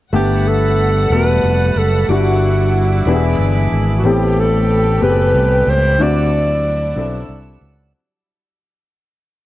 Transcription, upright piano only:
0.13 1.07 G2 soft
0.13 1.01 A3 medium
0.13 1.02 B3 soft
0.13 1.02 G4 medium
0.13 1.02 F#5 soft
1.12 2.00 A3 medium
1.12 2.00 B3 soft
1.12 2.00 F#4 soft
1.12 2.01 A4 medium
2.09 3.03 G2 soft
2.09 2.97 G3 medium
2.09 2.98 D4 medium
2.09 2.98 E4 medium
2.09 2.98 F#4 medium
3.07 4.01 E3 medium
3.07 3.95 B3 medium
3.07 3.95 D4 medium
3.07 3.95 E4 medium
3.07 3.14 G4 medium
3.15 3.99 G#4 medium
4.04 4.98 A2 medium
4.04 4.93 B3 medium
4.04 4.93 C4 medium
4.04 4.93 G4 medium
4.04 4.93 A4 medium
5.01 5.90 B3 medium
5.01 5.90 C4 soft
5.01 5.90 G4 medium
5.01 5.09 G#4 soft
5.09 5.94 A4 medium
5.99 6.93 D3 soft
5.99 6.88 C4 medium
5.99 6.88 D4 medium
5.99 6.88 E4 medium
5.99 6.88 F#4 medium
6.96 7.84 C4 medium
6.96 7.85 D4 medium
6.96 7.85 E4 medium
6.96 7.86 A4 medium

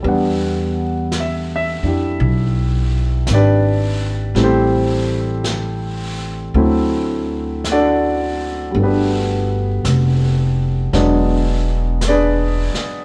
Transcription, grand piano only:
0.00 4.34 G3 soft
0.00 0.28 A4 soft
0.05 4.37 B3 soft
0.05 1.82 D4 soft
0.05 4.38 F#5 medium
1.20 1.51 E5 medium
1.56 1.89 E5 medium
1.84 3.33 D4 soft
1.84 4.35 E4 soft
1.84 3.33 G4 soft
3.34 4.36 D4 medium
3.34 4.35 G4 medium
3.34 4.36 B4 medium
3.34 4.35 D5 medium
4.36 6.55 G3 soft
4.36 6.54 A3 soft
4.36 4.43 C4 soft
4.36 6.55 E4 medium
4.43 5.10 C4 medium
4.43 5.10 G4 medium
4.43 5.10 A4 medium
4.43 5.10 C5 medium
6.55 8.75 F#3 medium
6.55 8.73 A3 medium
6.55 8.76 C4 soft
6.55 8.76 E4 medium
7.72 8.75 D4 medium
7.72 8.75 F#4 medium
7.72 8.75 A4 medium
7.72 8.75 D5 medium
8.71 10.92 G3 soft
8.71 10.93 A3 soft
8.79 8.82 B3 soft
8.79 10.93 D4 soft
8.83 9.50 B3 soft
8.83 9.50 F#4 soft
8.83 9.50 G4 soft
8.83 9.50 B4 medium
10.93 13.05 F#3 medium
10.93 13.05 G#3 medium
10.93 13.05 B3 medium
10.93 12.07 D4 medium
12.08 13.05 D4 medium
12.08 13.05 G#4 medium
12.08 13.05 B4 medium
12.08 13.05 D5 medium

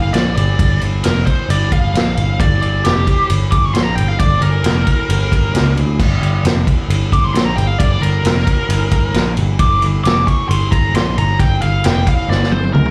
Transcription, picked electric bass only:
0.00 0.10 G1 medium
0.14 0.34 A#1 loud
0.36 0.57 G1 loud
0.59 0.80 G1 medium
0.81 1.02 G1 medium
1.04 1.25 F1 medium
1.27 muted picked electric bass stroke soft
1.49 1.91 G1 medium
1.94 2.15 A#1 medium
2.16 2.37 G1 medium
2.40 2.60 G1 loud
2.62 2.83 G1 medium
2.85 3.05 F1 medium
3.07 muted picked electric bass stroke soft
3.30 3.72 G1 loud
3.74 3.95 A#1 loud
3.97 4.18 G1 medium
4.20 4.40 G1 loud
4.41 4.62 G1 medium
4.64 4.85 F1 medium
5.09 5.51 G1 loud
5.54 5.75 C#2 medium
5.76 5.97 D2 medium
6.00 6.20 G1 loud
6.21 6.42 G1 medium
6.44 6.65 F1 medium
6.88 7.31 G1 medium
7.34 7.55 A#1 loud
7.57 7.78 G1 medium
7.80 8.01 G1 medium
8.01 8.22 G1 medium
8.24 8.45 F1 medium
8.69 9.11 G1 medium
9.14 9.35 A#1 loud
9.37 9.58 G1 medium
9.60 9.80 G1 loud
9.82 10.03 G1 medium
10.04 10.25 F1 medium
10.27 muted picked electric bass stroke soft
10.49 10.91 G1 loud
10.94 11.15 A#1 loud
11.17 11.38 G1 medium
11.40 11.60 G1 loud
11.62 11.83 G1 medium
11.85 12.05 F1 medium
12.07 muted picked electric bass stroke soft
12.28 12.71 G1 medium
12.74 12.91 C#2 loud

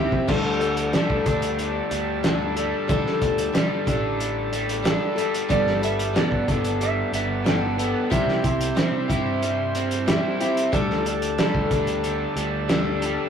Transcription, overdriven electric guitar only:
0.00 0.28 G3 medium
0.00 0.29 C4 medium
0.00 0.29 E4 medium
0.29 1.57 D3 medium
0.94 1.91 G3 medium
1.26 2.23 D4 medium
1.59 2.87 D3 medium
1.91 2.55 G3 medium
2.24 3.87 D4 medium
2.56 3.54 G3 medium
2.88 4.18 D3 medium
3.54 4.52 G3 medium
3.88 4.85 D4 medium
4.19 5.50 D3 medium
4.53 5.18 G3 medium
4.86 5.51 D4 medium
5.18 5.51 G3 medium
5.51 6.80 G3 medium
6.16 7.12 B3 medium
6.48 7.44 D4 medium
6.81 9.42 G3 medium
7.13 7.77 B3 medium
7.45 8.11 D4 medium
7.78 8.11 B3 medium
8.11 9.75 C3 medium
8.76 9.74 C4 medium
9.09 10.07 E4 medium
9.43 10.72 G3 medium
9.75 10.39 C4 medium
10.08 10.73 E4 medium
10.41 10.73 C4 medium
10.73 12.03 D3 medium
11.39 12.36 G3 medium
11.72 12.69 D4 medium
12.04 13.29 D3 medium
12.36 13.01 G3 medium
12.69 13.29 D4 medium
13.02 13.29 G3 medium

